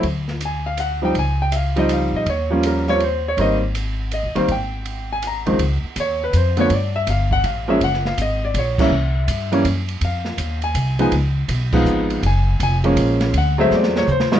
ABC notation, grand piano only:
X:1
M:3/4
L:1/16
Q:"Swing" 1/4=162
K:Ab
V:1 name="Grand piano"
z4 a2 f2 _g2 =g2 | a2 g2 [_f=f]2 e2 f2 e2 | d2 F2 B2 d2 c2 d2 | e2 z6 e2 f2 |
g6 a2 b3 z | [K:Gblyd] z4 d2 _c2 =c2 d2 | =d2 _f2 =f2 g2 f2 _f2 | g2 f2 e2 =d2 _d2 _f2- |
_f8 z4 | f6 a4 a2 | z6 f6 | a4 a2 z6 |
^f2 _f2 =d2 _d2 c3 z |]
V:2 name="Grand piano" clef=bass
z8 z2 [F,G,CE]2 | z6 [F,G,CE]6 | z2 [F,G,B,D]4 [F,G,B,C]2 z4 | [E,G,B,C]2 z8 [E,G,B,C]2 |
z8 z2 [D,,E,F,A,C]2 | [K:Gblyd] z8 z2 [=D,F,=A,_C]2 | z8 z2 [F,A,B,D]2 | z8 z2 [_F,=G,B,D]2 |
z6 [=E,=G,B,D]2 z4 | z8 z2 [F,A,_CE]2 | z6 [F,A,_CE]6 | z6 [F,A,B,D]6 |
z2 [^F,^G,=A,C]6 z2 [_A,,E,=G,B,E]2 |]